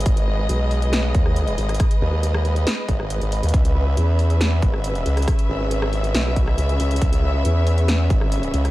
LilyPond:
<<
  \new Staff \with { instrumentName = "String section" } { \time 4/4 \key cis \dorian \tempo 4 = 138 << { <gis gis' dis''>1~ | <gis gis' dis''>1 | <cis' gis' e''>1~ | <cis' gis' e''>1~ |
<cis' gis' e''>1 | } \\ { b'1~ | b'1~ | b'1~ | b'1~ |
b'1 | } >> }
  \new Staff \with { instrumentName = "Wobble bass" } { \clef bass \time 4/4 \key cis \dorian gis,,4 b,,4. dis,4 gis,,8 | r8 dis,4. r8 gis,,8. gis,,8 dis,16 | cis,4 e,4. gis,,4 cis,8 | r8 gis,,4. b,,4 cis,8 cis,8 |
cis,4 e,4. gis,,4 cis,8 | }
  \new DrumStaff \with { instrumentName = "Drums" } \drummode { \time 4/4 <hh bd>16 hh8. hh8 hho16 hh16 <hh sn>8 <hh bd>16 ss16 hh16 hh16 hho16 <hh ss>32 hh32 | <hh bd ss>16 hh8. hh16 ss16 hho16 hh16 <hh sn>8 <hh bd>16 ss16 hh16 hh16 hho16 hh32 hh32 | <hh bd>16 hh8. hh8 hho16 hh16 <hh sn>8 <hh bd>16 ss16 hh16 hh16 hho16 <hh ss>32 hh32 | <hh bd ss>16 hh8. hh16 ss16 hho16 hh16 <hh sn>8 <hh bd>16 ss16 hh16 hh16 hho16 hh32 hh32 |
<hh bd>16 hh8. hh8 hho16 hh16 <hh sn>8 <hh bd>16 ss16 hh16 hh16 hho16 <hh ss>16 | }
>>